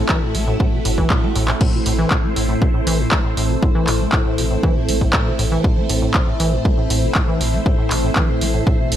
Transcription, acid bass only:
0.10 0.24 E3 loud
0.22 0.36 A2 loud
0.35 0.45 A3 medium
0.47 0.58 A2 medium
0.60 0.74 A2 medium
0.72 0.79 B2 loud
0.85 0.92 A2 medium
0.98 1.12 E3 loud
1.10 1.24 A2 loud
1.23 1.33 A3 medium
1.36 1.46 A2 medium
1.48 1.52 A2 medium
1.61 1.75 A2 medium
1.73 1.80 B2 loud
1.86 1.93 A2 medium
1.99 2.13 E3 loud
2.11 2.25 A2 loud
2.24 2.34 A3 medium
2.36 2.47 A2 medium
2.49 2.63 A2 medium
2.61 2.69 B2 loud
2.74 2.81 A2 medium
2.87 3.01 E3 loud
2.99 3.13 A2 loud
3.12 3.22 A3 medium
3.25 3.35 A2 medium
3.37 3.51 A2 medium
3.50 3.57 B2 loud
3.62 3.69 A2 medium
3.75 3.89 E3 loud
3.88 4.02 A2 loud
4.00 4.11 A3 medium
4.13 4.23 A2 medium
4.26 4.39 A2 medium
4.38 4.45 B2 loud
4.51 4.58 A2 medium
4.63 4.77 E3 loud
4.76 4.90 A2 loud
4.89 4.99 A3 medium
5.01 5.12 A2 medium
5.14 5.28 A2 medium
5.26 5.33 B2 loud
5.39 5.46 A2 medium
5.52 5.66 E3 loud
5.64 5.78 A2 loud
5.77 5.87 A3 medium
5.90 6.00 A2 medium
6.02 6.16 A2 medium
6.15 6.22 B2 loud
6.27 6.34 A2 medium
6.40 6.54 E3 loud
6.53 6.67 A2 loud
6.65 6.76 A3 medium
6.78 6.88 A2 medium
6.90 7.04 A2 medium
7.03 7.10 B2 loud
7.15 7.22 A2 medium
7.28 7.42 E3 loud
7.41 7.55 A2 loud
7.53 7.64 A3 medium
7.66 7.76 A2 medium
7.79 7.93 A2 medium
7.91 7.98 B2 loud
8.04 8.11 A2 medium
8.16 8.30 E3 loud
8.29 8.43 A2 medium
8.41 8.52 A3 medium
8.54 8.64 A2 medium
8.67 8.81 A2 medium
8.79 8.93 B2 loud
8.92 8.96 A2 medium

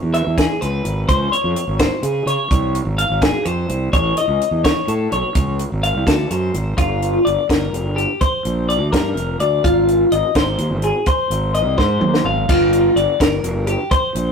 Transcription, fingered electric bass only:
0.03 0.22 E2 medium
0.27 0.45 E2 medium
0.62 0.81 C#2 medium
0.85 1.04 G#1 medium
1.08 1.28 C#2 medium
1.44 1.54 F2 medium
1.68 1.87 G#1 medium
2.03 2.22 C#3 medium
2.26 2.36 C#3 medium
2.50 2.79 C2 medium
2.85 3.05 G#1 medium
3.10 3.29 G#1 medium
3.46 3.65 F2 medium
3.69 3.88 C2 medium
3.93 4.12 A1 medium
4.28 4.38 C#2 medium
4.51 4.71 E2 medium
4.87 5.07 A2 medium
5.12 5.21 B1 medium
5.35 5.64 C#2 medium
5.72 5.91 G#1 medium
5.95 6.04 C2 medium
6.07 6.26 D2 medium
6.31 6.50 F#2 medium
6.54 6.74 G#1 medium
6.78 7.16 G1 medium
7.26 7.36 G1 medium
7.50 7.69 G1 medium
7.73 7.85 F1 medium
7.85 8.04 G1 medium
8.45 8.80 A#1 medium
8.80 8.90 D2 medium
8.93 9.12 G2 medium
9.15 9.35 F1 medium
9.40 9.59 D2 medium
9.64 10.03 G#1 medium
10.12 10.21 G#1 medium
10.35 10.54 G#1 medium
10.58 10.72 D#2 medium
10.71 10.90 G#1 medium
11.30 11.65 G#1 medium
11.65 11.75 C2 medium
11.78 11.97 G#2 medium
12.01 12.20 D#2 medium
12.25 12.44 G#1 medium
12.49 12.88 G1 medium
12.96 13.06 G1 medium
13.20 13.40 G1 medium
13.43 13.55 F1 medium
13.55 13.75 G1 medium
14.15 14.32 A#1 medium

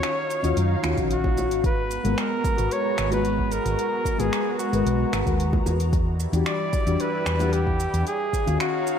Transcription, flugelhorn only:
0.00 0.80 C#5 loud
1.13 1.61 F#4 medium
1.66 2.21 B4 medium
2.20 2.74 A#4 medium
2.73 3.12 C#5 loud
3.13 3.54 B4 loud
3.53 4.21 A#4 medium
4.19 4.59 G#4 medium
4.59 5.62 F#4 medium
6.47 7.02 D5 medium
7.01 7.55 B4 medium
7.53 8.07 G4 medium
8.07 8.57 G#4 loud
8.61 8.99 F#4 medium

